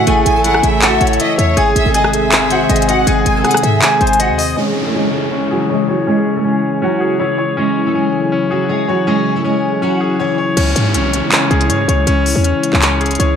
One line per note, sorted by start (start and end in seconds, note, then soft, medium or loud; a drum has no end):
0.00 1.53 C#3 medium
0.00 1.53 E3 medium
0.00 0.07 A3 loud
0.00 1.54 A3 medium
0.00 0.44 E4 medium
0.00 1.53 E4 medium
0.00 0.26 A4 medium
0.00 0.44 C#5 medium
0.00 1.20 E5 medium
0.07 0.25 A1 loud
0.07 1.01 A3 loud
0.07 0.34 G#4 loud
0.07 0.34 G#5 loud
0.07 closed hi-hat medium
0.26 0.62 A1 loud
0.26 0.43 G#5 medium
0.26 closed hi-hat medium
0.36 0.44 A4 medium
0.36 0.44 A5 medium
0.44 1.38 E4 medium
0.44 0.80 G#4 medium
0.44 0.62 F#5 medium
0.44 0.80 G#5 medium
0.44 closed hi-hat medium
0.54 cross-stick loud
0.63 0.99 A1 loud
0.63 1.16 E5 medium
0.63 closed hi-hat medium
0.82 1.18 F#4 medium
0.82 1.57 A4 loud
0.82 1.17 F#5 medium
0.82 clap loud
0.82 closed hi-hat medium
1.01 1.19 A1 loud
1.01 1.57 C#5 medium
1.01 closed hi-hat medium
1.07 closed hi-hat medium
1.13 closed hi-hat medium
1.20 1.37 E4 medium
1.20 1.37 D#5 medium
1.20 1.37 E5 medium
1.20 closed hi-hat loud
1.38 1.56 E2 loud
1.38 1.56 C#5 medium
1.38 1.57 E5 medium
1.38 closed hi-hat medium
1.57 1.75 G#1 loud
1.57 4.54 C3 medium
1.57 4.54 D#3 medium
1.57 4.54 G#3 medium
1.57 4.54 C4 medium
1.57 1.93 G#4 loud
1.57 1.85 G#4 medium
1.57 1.84 G#5 loud
1.57 closed hi-hat medium
1.76 1.85 G#1 loud
1.76 1.94 E5 medium
1.76 closed hi-hat medium
1.86 2.66 G#1 loud
1.86 1.94 A4 medium
1.86 1.94 A5 medium
1.94 2.30 G#4 medium
1.94 2.48 G#4 medium
1.94 2.12 D#5 medium
1.94 2.47 G#5 medium
1.94 closed hi-hat medium
2.04 cross-stick loud
2.13 2.84 E5 medium
2.13 closed hi-hat medium
2.32 3.05 G#4 medium
2.32 clap loud
2.32 closed hi-hat medium
2.50 2.69 F#4 medium
2.50 3.44 C5 medium
2.50 2.68 F#5 medium
2.50 closed hi-hat medium
2.69 3.05 G#1 loud
2.69 2.87 G#4 medium
2.69 2.87 D#5 medium
2.69 2.87 G#5 medium
2.69 closed hi-hat medium
2.76 closed hi-hat medium
2.82 closed hi-hat medium
2.88 3.06 F#4 medium
2.88 3.82 D#5 medium
2.88 3.06 F#5 medium
2.88 closed hi-hat medium
3.07 3.25 G#1 loud
3.07 3.43 G#4 loud
3.07 3.34 G#4 medium
3.07 3.34 G#5 loud
3.07 closed hi-hat medium
3.26 3.44 G#1 loud
3.26 3.44 G#5 medium
3.26 closed hi-hat medium
3.36 3.45 A4 medium
3.36 3.44 A5 medium
3.44 3.81 G#4 medium
3.44 3.80 G#4 medium
3.44 3.62 F#5 medium
3.44 3.80 G#5 medium
3.44 cross-stick medium
3.44 closed hi-hat medium
3.51 cross-stick loud
3.51 closed hi-hat medium
3.57 closed hi-hat medium
3.63 3.81 G#2 loud
3.63 3.81 E5 medium
3.63 closed hi-hat medium
3.82 4.57 G#4 medium
3.82 4.17 G#4 medium
3.82 4.17 G#5 medium
3.82 clap loud
3.82 closed hi-hat medium
4.01 4.31 G#1 loud
4.01 4.57 C5 medium
4.01 closed hi-hat soft
4.07 closed hi-hat medium
4.13 closed hi-hat medium
4.20 4.37 F#4 medium
4.20 4.37 D#5 medium
4.20 4.37 F#5 medium
4.20 closed hi-hat loud
4.29 4.56 D#2 loud
4.38 4.57 D#5 medium
4.38 4.56 D#5 medium
4.38 open hi-hat medium
4.57 10.53 C#3 medium
4.57 10.53 E3 medium
4.57 7.54 G#3 medium
4.57 4.84 G#3 medium
4.57 4.93 C#4 medium
4.57 10.53 E4 medium
4.57 4.84 G#4 loud
4.57 downlifter medium
4.86 4.94 A3 medium
4.86 4.94 A4 medium
4.94 5.48 G#3 medium
4.94 5.31 C#4 medium
4.94 5.47 G#4 medium
5.32 6.05 C#4 medium
5.51 5.69 F#3 medium
5.51 5.68 F#4 medium
5.51 6.44 G#4 medium
5.69 5.87 G#3 medium
5.69 5.87 G#4 medium
5.69 5.87 C#5 medium
5.88 6.06 F#3 medium
5.88 6.06 F#4 medium
5.88 6.82 C#5 medium
6.07 6.34 G#3 medium
6.07 6.43 C#4 loud
6.07 6.34 G#4 loud
6.35 6.44 A3 medium
6.35 6.44 A4 medium
6.44 6.80 G#3 medium
6.44 6.80 C#4 medium
6.44 6.80 G#4 medium
6.82 7.18 F#3 medium
6.82 7.56 C#4 medium
6.82 7.17 F#4 loud
7.01 7.94 G#4 medium
7.19 7.37 E3 medium
7.19 7.37 E4 medium
7.19 7.37 C#5 medium
7.38 8.32 C#5 medium
7.57 10.54 F#3 medium
7.57 7.84 G#3 medium
7.57 7.93 C#4 medium
7.57 7.84 G#4 loud
7.86 7.94 A3 medium
7.86 7.94 A4 medium
7.95 8.48 G#3 medium
7.95 8.30 C#4 medium
7.95 8.47 G#4 medium
8.32 9.06 C#4 medium
8.51 8.69 F#3 medium
8.51 8.68 F#4 medium
8.51 9.44 G#4 medium
8.69 8.87 G#3 medium
8.69 8.87 G#4 medium
8.69 8.87 C#5 medium
8.88 9.06 F#3 medium
8.88 9.06 F#4 medium
8.88 9.82 C#5 medium
9.07 9.34 G#3 medium
9.07 9.43 C#4 medium
9.07 9.34 G#4 loud
9.36 9.44 A3 medium
9.36 9.44 A4 medium
9.44 9.80 G#3 medium
9.44 9.81 C#4 medium
9.44 9.80 G#4 medium
9.82 10.18 F#3 medium
9.82 10.55 C#4 medium
9.82 10.17 F#4 medium
10.01 10.57 G#4 medium
10.20 10.37 E3 medium
10.20 10.37 E4 medium
10.20 10.37 C#5 medium
10.38 10.57 C#5 medium
10.57 10.75 C#2 loud
10.57 13.36 C#3 medium
10.57 13.36 E3 medium
10.57 13.36 G#3 medium
10.57 10.93 C#4 loud
10.57 13.36 E4 medium
10.57 closed hi-hat medium
10.57 crash medium
10.57 downlifter medium
10.76 10.96 G#2 loud
10.76 closed hi-hat medium
10.94 11.22 C2 loud
10.94 11.31 C#4 medium
10.94 closed hi-hat medium
11.13 closed hi-hat medium
11.32 12.05 C#4 medium
11.32 clap loud
11.32 closed hi-hat medium
11.51 11.71 C#2 loud
11.51 12.44 G#4 medium
11.51 closed hi-hat soft
11.61 closed hi-hat medium
11.69 11.87 G#2 loud
11.69 11.87 C#5 medium
11.69 closed hi-hat medium
11.88 12.06 C#2 loud
11.88 12.82 C#5 medium
11.88 closed hi-hat medium
12.07 12.35 C#2 loud
12.07 12.43 C#4 loud
12.07 closed hi-hat medium
12.26 open hi-hat medium
12.36 12.54 E2 loud
12.44 12.80 C#4 medium
12.44 closed hi-hat medium
12.63 closed hi-hat medium
12.73 13.18 C#2 loud
12.73 clap medium
12.82 13.36 C#4 medium
12.82 clap loud
12.82 closed hi-hat medium
13.01 13.36 G#4 medium
13.01 closed hi-hat soft
13.06 closed hi-hat soft
13.11 closed hi-hat medium
13.15 closed hi-hat medium
13.20 13.36 C#2 loud
13.20 13.36 C#5 medium
13.20 closed hi-hat medium